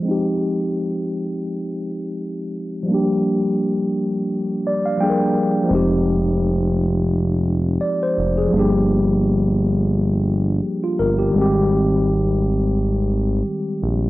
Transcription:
X:1
M:4/4
L:1/16
Q:"Swing 16ths" 1/4=85
K:Fdor
V:1 name="Tine electric piano"
z16 | z8 z2 d f g4 | z12 d c2 A- | A z12 F B G- |
G z12 z3 |]
V:2 name="Tine electric piano"
[F,A,CEG]16 | [F,G,B,DG]12 [F,G,B,DAB]4 | [F,A,CEG]16 | [F,G,B,DG]16 |
[E,G,A,CG]16 |]
V:3 name="Analog synth bass" clef=bass
z16 | z16 | F,,,12 z2 F,,,2 | G,,,12 z2 G,,,2 |
A,,,12 z2 B,,,2 |]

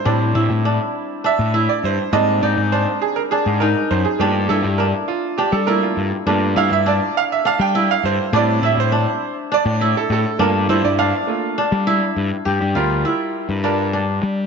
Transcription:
X:1
M:7/8
L:1/16
Q:1/4=102
K:Gdor
V:1 name="Grand piano"
c3 z4 z e3 d c2 | _e2 d2 c2 _A B A2 B2 c A | G2 A2 B2 F2 G A B F2 z | z2 f e d2 f e f g2 f c2 |
d2 e c4 z d3 A A2 | B2 c d f8- f2 | z2 [G,FB]6 [G,FB]2 z4 |]
V:2 name="Grand piano"
[G,CE]12- [G,CE]2 | [G,B,C]12- [G,B,C]2 | [A,B,F]2 z8 [A,B,F]2 z2 | [A,B,F]12- [A,B,F]2 |
[G,CE]6 z8 | [A,B,F]2 z4 [A,B,F]2 z6 | z12 z2 |]
V:3 name="Kora"
D2 E2 D4 D2 E4 | D2 _E2 D4 D2 E4 | D2 E2 D4 D2 E4 | D2 E2 D4 D2 E4 |
D2 E2 D4 D2 E4 | D2 E2 D4 D2 E4 | G2 F2 E4 D2 D4 |]
V:4 name="Picked electric bass" clef=bass
A,,2 A,, A,,2 z4 A,,2 z G,, z | _A,,2 A,, A,,2 z4 A,,2 z ^F,, z | G,,2 G,, G,,2 z4 G,2 z G,, z | G,,2 G,, G,,2 z4 G,2 z G,, z |
A,,2 A,, A,,2 z4 A,,2 z A,, z | G,,2 G,, G,,2 z4 G,2 z G,, z | G,, G,, D,,2 z3 G,,4- G,, G,2 |]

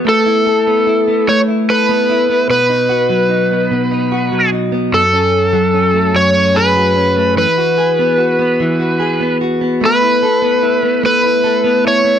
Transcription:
X:1
M:6/8
L:1/16
Q:3/8=49
K:Alyd
V:1 name="Electric slide guitar"
A6 c2 B4 | B8- B2 z2 | A6 c2 B4 | B8- B2 z2 |
B6 B4 c2 |]
V:2 name="Clean electric guitar"
A, E A B, E B, A, E A B, E B, | B,, D F F, D B, B,, D F F, D B, | F,, C2 F, C A, F,, C G F, C A, | E, F G B, F B, E, F G B, F B, |
A, E A B, E B, A, E A B, E B, |]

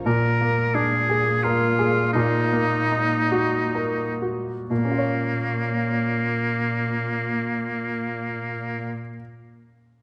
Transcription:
X:1
M:3/4
L:1/8
Q:1/4=68
K:Bbm
V:1 name="Oboe"
B2 A2 F2 | E4- E z | B,6- | B,6 |]
V:2 name="Grand piano"
B,, B, =D A B A | B,, B, E G B G | [B,,B,DFd]6- | [B,,B,DFd]6 |]
V:3 name="Cello section" clef=bass
B,,6- | B,,4- B,, z | B,,6- | B,,6 |]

